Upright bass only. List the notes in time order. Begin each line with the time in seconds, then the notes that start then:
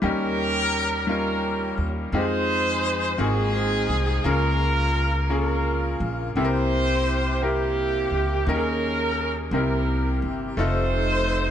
0.03 D#2
1.78 D#2
2.12 F2
3.19 G#1
3.89 C2
4.24 C#2
6.00 A#1
6.36 C2
8.11 C#2
8.47 D#2
9.51 C2
10.22 G1
10.57 F1